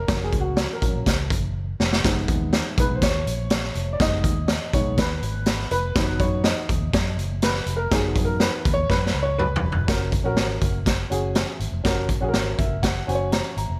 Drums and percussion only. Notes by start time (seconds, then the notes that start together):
0.08 kick, snare, closed hi-hat
0.33 kick, closed hi-hat
0.57 snare, closed hi-hat
0.82 kick, closed hi-hat
1.06 kick, snare, closed hi-hat
1.30 kick, closed hi-hat
1.80 snare
1.93 snare
2.04 kick, snare, closed hi-hat
2.28 kick, closed hi-hat
2.53 snare, closed hi-hat
2.78 kick, closed hi-hat
3.02 kick, snare, closed hi-hat
3.27 closed hi-hat
3.50 snare, closed hi-hat
3.64 snare
3.75 closed hi-hat
4.00 kick, snare, closed hi-hat
4.24 kick, closed hi-hat
4.48 snare, closed hi-hat
4.73 kick, closed hi-hat
4.98 kick, snare, closed hi-hat
5.23 closed hi-hat
5.46 snare, closed hi-hat
5.59 snare
5.71 closed hi-hat
5.95 kick, snare, closed hi-hat
6.20 kick, closed hi-hat
6.44 snare, closed hi-hat
6.69 kick, closed hi-hat
6.93 kick, snare, closed hi-hat
7.19 closed hi-hat
7.42 snare, closed hi-hat
7.55 snare
7.67 closed hi-hat
7.91 kick, snare, closed hi-hat
8.16 kick, closed hi-hat
8.40 snare, closed hi-hat
8.65 kick, closed hi-hat
8.90 kick, snare
9.06 snare
9.39 mid tom
9.56 floor tom
9.72 floor tom
9.88 kick, snare, closed hi-hat
10.12 kick, closed hi-hat
10.37 snare, closed hi-hat
10.61 kick, closed hi-hat
10.86 kick, snare, closed hi-hat
11.12 closed hi-hat
11.35 snare, closed hi-hat
11.60 closed hi-hat
11.85 kick, snare, closed hi-hat
12.09 kick, closed hi-hat
12.34 snare, closed hi-hat
12.59 kick, closed hi-hat
12.83 kick, snare, closed hi-hat
13.09 closed hi-hat
13.32 snare, closed hi-hat
13.57 closed hi-hat